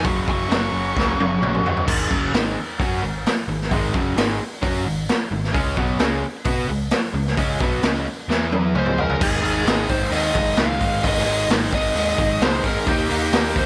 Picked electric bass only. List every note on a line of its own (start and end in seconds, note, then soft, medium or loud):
0.05 0.22 F#1 loud
0.28 0.45 F#1 medium
0.51 0.68 F#1 medium
0.73 0.90 F#1 medium
0.96 1.13 C#2 medium
1.18 1.36 F#1 medium
1.42 1.59 A#1 medium
1.64 1.81 F#2 medium
1.88 2.09 G#1 loud
2.10 2.32 F#1 medium
2.33 2.54 G#1 loud
2.80 3.01 F#2 medium
3.01 3.23 G#1 medium
3.48 3.69 G#1 loud
3.71 3.92 G#1 medium
3.94 4.15 F#1 loud
4.16 4.37 G#1 medium
4.63 4.84 F#2 loud
4.85 5.07 G#1 medium
5.31 5.52 G#1 medium
5.55 5.76 C#2 loud
5.77 5.99 B1 medium
5.99 6.21 C#2 loud
6.46 6.67 B2 loud
6.68 6.90 C#2 medium
7.14 7.35 C#2 loud
7.37 7.59 C#2 medium
7.60 7.82 B1 loud
7.83 8.05 C#2 loud
8.28 8.71 E2 loud
8.75 9.17 C#2 medium
9.21 9.38 G#1 loud
9.44 9.61 G#1 medium
9.67 9.84 G#1 loud
9.89 10.07 G#1 medium
10.12 10.29 D#2 loud
10.35 10.52 G#1 medium
10.58 10.75 C#2 medium
10.81 10.98 G#2 loud
11.04 11.21 G#1 loud
11.26 11.43 G#1 medium
11.49 11.66 G#1 loud
11.72 11.90 G#1 medium
11.94 12.12 D#2 loud
12.19 12.36 G#1 medium
12.40 12.58 C#2 medium
12.64 12.81 G#2 loud
12.87 13.04 D#2 loud
13.11 13.28 D#2 medium
13.33 13.50 D#2 medium
13.56 13.66 D#2 loud